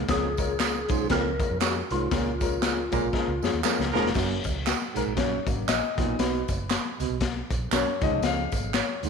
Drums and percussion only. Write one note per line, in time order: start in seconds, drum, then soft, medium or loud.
0.08 kick loud
0.08 snare loud
0.08 closed hi-hat loud
0.08 tambourine medium
0.37 kick medium
0.37 closed hi-hat medium
0.37 tambourine medium
0.60 snare loud
0.60 clap medium
0.60 closed hi-hat medium
0.60 tambourine medium
0.89 kick loud
0.89 closed hi-hat medium
0.89 tambourine medium
1.10 kick medium
1.10 snare loud
1.10 closed hi-hat loud
1.10 tambourine soft
1.40 kick loud
1.40 closed hi-hat medium
1.40 tambourine soft
1.60 snare loud
1.60 clap loud
1.60 closed hi-hat medium
1.60 tambourine loud
1.90 closed hi-hat medium
2.11 kick loud
2.11 snare loud
2.11 closed hi-hat medium
2.11 tambourine soft
2.41 kick medium
2.41 closed hi-hat medium
2.41 tambourine medium
2.62 snare loud
2.62 clap medium
2.62 closed hi-hat medium
2.62 tambourine medium
2.92 kick loud
2.92 closed hi-hat medium
2.92 tambourine medium
3.13 kick medium
3.13 snare medium
3.42 snare medium
3.42 tambourine medium
3.64 snare medium
3.64 clap loud
3.64 tambourine loud
3.81 snare medium
3.96 snare loud
4.07 snare medium
4.14 kick loud
4.14 snare loud
4.14 crash loud
4.14 tambourine medium
4.44 kick medium
4.44 closed hi-hat medium
4.44 tambourine medium
4.66 snare medium
4.66 clap medium
4.66 closed hi-hat medium
4.66 tambourine medium
4.96 closed hi-hat medium
4.96 tambourine medium
5.17 kick medium
5.17 snare loud
5.17 closed hi-hat medium
5.17 tambourine soft
5.47 kick loud
5.47 closed hi-hat medium
5.47 tambourine soft
5.68 snare loud
5.68 clap loud
5.68 closed hi-hat medium
5.68 tambourine loud
5.98 kick loud
5.98 snare soft
5.98 closed hi-hat medium
6.19 snare loud
6.19 closed hi-hat medium
6.19 tambourine medium
6.48 kick medium
6.48 closed hi-hat medium
6.48 tambourine medium
6.70 snare loud
6.70 clap medium
6.70 closed hi-hat medium
6.70 tambourine medium
7.00 closed hi-hat medium
7.00 tambourine medium
7.21 kick medium
7.21 snare loud
7.21 closed hi-hat loud
7.21 tambourine soft
7.50 kick loud
7.50 closed hi-hat medium
7.50 tambourine medium
7.72 snare loud
7.72 clap medium
7.72 closed hi-hat medium
7.72 tambourine loud
8.01 kick loud
8.01 snare soft
8.01 closed hi-hat medium
8.01 tambourine soft
8.22 snare loud
8.22 closed hi-hat loud
8.22 tambourine medium
8.52 kick medium
8.52 closed hi-hat medium
8.52 tambourine medium
8.74 snare loud
8.74 clap medium
8.74 closed hi-hat medium
8.74 tambourine medium
9.03 closed hi-hat medium
9.03 tambourine medium